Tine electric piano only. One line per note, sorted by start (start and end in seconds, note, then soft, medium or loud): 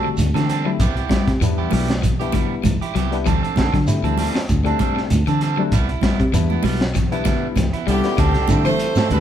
0.00 0.26 G3 medium
0.00 0.26 A3 medium
0.00 0.26 C4 medium
0.00 0.27 F#4 medium
0.64 0.79 G3 medium
0.64 0.80 A3 medium
0.64 0.80 C4 medium
0.64 0.80 E4 medium
1.42 1.88 G3 medium
1.42 1.88 B3 medium
1.42 1.89 D4 medium
1.42 1.89 E4 medium
2.20 2.73 G3 medium
2.20 2.73 B3 medium
2.20 2.74 D4 medium
2.20 2.74 E4 medium
3.11 3.26 G3 medium
3.11 3.26 B3 medium
3.11 3.27 D4 medium
3.11 3.27 E4 medium
3.86 4.33 G3 medium
3.86 4.33 A3 medium
3.86 4.34 C4 medium
3.86 4.34 E4 medium
4.64 5.18 G3 medium
4.64 5.18 A3 medium
4.64 5.19 C4 medium
4.64 5.19 D4 loud
5.57 5.72 G3 medium
5.57 5.73 A3 medium
5.57 5.73 C4 medium
5.57 5.73 D4 loud
6.32 6.79 G3 medium
6.32 6.80 B3 medium
6.32 6.80 D4 medium
6.32 6.80 E4 loud
7.11 7.65 G3 medium
7.11 7.65 B3 medium
7.11 7.65 D4 medium
7.11 7.65 E4 loud
8.04 8.18 G3 medium
8.04 8.19 B3 medium
8.04 8.19 D4 medium
8.04 8.19 E4 loud
8.49 8.95 G3 medium
8.49 8.95 A3 medium
8.49 8.96 C4 medium
8.49 8.96 E4 medium